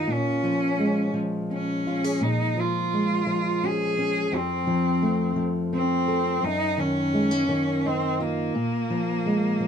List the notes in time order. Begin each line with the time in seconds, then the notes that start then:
Already playing: A#3 D#4 F4
0.07 A#2
0.13 C#4
0.43 F3
0.79 G#3
1.14 F3
1.51 C#4
1.87 F4
2.04 G#4
2.21 A#2 D#4
2.57 F3 F4
2.93 G#3
3.27 F3
3.63 C#4 G#4
3.98 C#4
4.32 F2
4.36 C4
4.67 F3
5.02 A3
5.36 F3
5.73 C4
6.08 A4
6.43 F#2 D#4
6.78 D#3 C#4
7.14 G#3
7.31 A#3
7.48 D#3
7.85 C4 D#4
8.20 A#3 F4
8.55 A#2
8.90 F3
9.26 G#3
9.60 F3